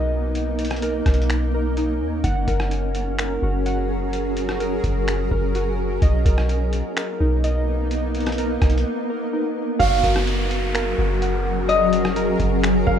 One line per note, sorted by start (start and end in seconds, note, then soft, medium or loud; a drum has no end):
0.00 1.02 B1 loud
0.00 2.20 A#3 medium
0.00 0.33 B3 medium
0.00 1.06 D#4 medium
0.00 2.20 D#4 medium
0.00 0.81 A#4 medium
0.00 1.30 D#5 medium
0.35 5.98 C#4 medium
0.35 closed hi-hat medium
0.59 closed hi-hat medium
0.65 closed hi-hat medium
0.70 cross-stick medium
0.70 closed hi-hat medium
0.76 closed hi-hat medium
0.82 1.53 A#4 medium
0.82 closed hi-hat medium
1.06 2.02 B1 loud
1.06 kick medium
1.06 cross-stick medium
1.06 closed hi-hat medium
1.14 closed hi-hat medium
1.22 closed hi-hat medium
1.30 finger snap loud
1.30 closed hi-hat medium
1.54 2.25 A#4 medium
1.77 2.24 D#4 medium
1.77 closed hi-hat medium
2.00 2.23 D#2 loud
2.24 2.47 F#1 loud
2.24 5.98 F#3 medium
2.24 5.98 F#4 medium
2.24 5.98 G#4 medium
2.24 5.98 A#4 medium
2.24 3.65 F#5 loud
2.24 kick loud
2.24 closed hi-hat medium
2.48 3.38 F#1 loud
2.48 3.18 A#4 medium
2.48 kick loud
2.48 closed hi-hat medium
2.60 cross-stick loud
2.71 closed hi-hat medium
2.95 closed hi-hat medium
3.18 4.59 A#4 medium
3.18 finger snap loud
3.18 closed hi-hat medium
3.42 4.80 F#1 loud
3.42 4.84 F#4 medium
3.66 5.08 F#5 medium
3.66 closed hi-hat medium
4.13 closed hi-hat medium
4.37 closed hi-hat medium
4.49 cross-stick medium
4.60 5.30 A#4 loud
4.60 closed hi-hat medium
4.84 5.29 F#1 loud
4.84 kick medium
4.84 closed hi-hat medium
5.08 finger snap loud
5.08 closed hi-hat medium
5.31 5.99 F#1 loud
5.31 6.02 A#4 medium
5.31 kick loud
5.55 6.02 F#4 medium
5.55 closed hi-hat medium
6.02 6.25 B1 loud
6.02 9.76 A#3 medium
6.02 9.76 B3 medium
6.02 9.76 D#4 medium
6.02 7.43 D#5 medium
6.02 kick loud
6.02 closed hi-hat medium
6.25 6.82 B1 loud
6.25 6.96 A#4 medium
6.25 kick loud
6.25 closed hi-hat medium
6.38 cross-stick medium
6.49 closed hi-hat medium
6.73 closed hi-hat medium
6.97 8.37 A#4 medium
6.97 finger snap loud
6.97 closed hi-hat medium
7.20 8.58 B1 loud
7.20 8.62 D#4 medium
7.44 8.86 D#5 medium
7.44 closed hi-hat medium
7.91 closed hi-hat medium
8.15 closed hi-hat medium
8.20 closed hi-hat medium
8.26 cross-stick medium
8.26 closed hi-hat medium
8.32 closed hi-hat medium
8.38 9.09 A#4 medium
8.38 closed hi-hat medium
8.62 8.84 B1 loud
8.62 kick medium
8.62 cross-stick medium
8.62 closed hi-hat medium
8.70 closed hi-hat medium
8.78 closed hi-hat medium
9.10 9.80 A#4 medium
9.33 9.80 D#4 medium
9.79 10.03 F#1 loud
9.79 12.99 F#3 medium
9.79 12.99 C#4 medium
9.79 10.98 F#4 loud
9.79 12.99 F#4 medium
9.79 12.99 G#4 medium
9.79 12.99 A#4 medium
9.79 11.46 F5 loud
9.79 kick loud
9.79 closed hi-hat medium
9.79 downlifter medium
10.04 10.94 F#1 loud
10.04 10.73 A#4 medium
10.04 kick loud
10.04 closed hi-hat medium
10.16 cross-stick loud
10.27 closed hi-hat medium
10.51 closed hi-hat medium
10.75 12.15 A#4 loud
10.75 finger snap loud
10.75 closed hi-hat medium
10.98 12.36 F#1 loud
10.98 12.40 F#4 medium
11.22 12.64 F#5 medium
11.22 closed hi-hat medium
11.69 12.99 D#5 loud
11.69 closed hi-hat medium
11.93 closed hi-hat medium
12.05 cross-stick loud
12.16 12.86 A#4 loud
12.16 closed hi-hat medium
12.40 12.85 F#1 loud
12.40 kick loud
12.40 closed hi-hat medium
12.63 finger snap loud
12.63 closed hi-hat medium
12.87 12.99 F#1 loud
12.87 12.99 A#4 medium
12.87 12.99 F5 medium
12.87 kick loud